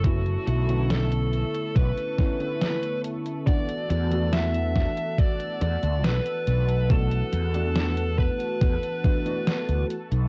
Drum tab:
HH |xxxxxxxxxxxxxxxx|xxxxxx-xxxxxxxxx|xxxxxx-xxxxxxxxx|
SD |----o-----o-o---|----o-o-----o---|----o-------o---|
BD |o-------o-o-----|o-----o-o-------|o-----o-o-o-----|